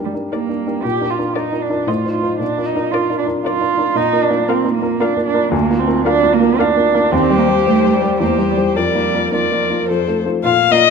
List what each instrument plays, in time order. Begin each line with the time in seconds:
Already playing: grand piano G2 D4 G4 A#4, viola A#4, violin D5
0.04 cello G3
0.14 grand piano D4 G4 A#4
0.31 cello A#3, grand piano D4 G4 A#4, viola A#4, violin D5
0.49 grand piano D4 G4 A#4
0.67 grand piano D4 G4 A#4
0.82 grand piano A#2, cello G4
1.01 grand piano D4 F4 A#4
1.10 cello F4
1.19 grand piano D4 F4 A#4
1.35 grand piano D4 F4 A#4, cello D#4, viola A#4, violin D5
1.52 grand piano D4 F4 A#4
1.62 cello D4
1.70 grand piano D4 F4 A#4
1.87 grand piano A2, cello F4, viola C5, violin D#5
2.05 grand piano D#4 F4 C5
2.13 cello F4
2.22 grand piano D#4 F4 C5
2.39 grand piano A#2, cello D4
2.57 grand piano D4 F4 A#4
2.66 cello D#4
2.75 grand piano D4 F4 A#4
2.91 grand piano D4 F4 A#4, cello F4, viola A#4, violin D5
3.10 grand piano D4 F4 A#4
3.18 cello D4
3.27 grand piano D4 F4 A#4
3.44 grand piano D4 F4 A#4, cello F4, viola A#4, violin D5
3.61 grand piano D4 F4 A#4
3.78 grand piano D4 F4 A#4
3.95 grand piano A#2, cello D#4
4.13 grand piano A#3 F4 A#4
4.23 cello D4
4.30 grand piano A#3 F4 A#4
4.48 grand piano A#3 F4 A#4, cello C4, viola A#4, violin F5
4.64 grand piano A#3 F4 A#4
4.74 cello A#3
4.82 grand piano A#3 F4 A#4
5.00 grand piano A#3 F4 A#4, cello D4, viola A#4, violin F5
5.17 grand piano A#3 F4 A#4
5.27 cello D4
5.34 grand piano A#3 F4 A#4
5.51 grand piano D2, cello A#3
5.70 grand piano A#3 F4 A#4
5.79 cello C4
5.87 grand piano A#3 F4 A#4
6.04 grand piano A#3 F4 A#4, cello D4, viola A#4, violin F5
6.23 grand piano A#3 F4 A#4
6.33 cello A#3
6.40 grand piano A#3 F4 A#4
6.58 grand piano A#3 F4 A#4, cello D4, viola A#4, violin F5
6.76 grand piano A#3 F4 A#4
6.94 grand piano A#3 F4 A#4
7.11 grand piano D#2, cello C4, viola G4, violin C5
7.30 grand piano G3 G4 C5
7.38 cello A#3
7.47 grand piano G3 G4 C5
7.65 grand piano G3 G4 C5, cello A3
7.84 grand piano G3 G4 C5
7.94 cello G3
8.02 grand piano G3 G4 C5
8.20 grand piano E2, cello A#3, viola G4, violin C5
8.38 grand piano G3 G4 C5
8.50 cello G3
8.57 grand piano G3 G4 C5
8.76 grand piano F2, cello G3, viola A#4, violin D5
8.95 grand piano A#3 F4 D5
9.14 grand piano A#3 F4 D5
9.32 cello F3, grand piano A#3 F4 D5, viola A#4, violin D5
9.51 grand piano A#3 F4 D5
9.70 grand piano A#3 F4 D5
9.88 grand piano F2, viola A4, violin C5
10.08 grand piano A3 F4 C5
10.25 grand piano A3 F4 C5
10.43 grand piano A#2, cello F4, violin F5
10.71 grand piano A#3 F4 D5, cello D#4, violin D#5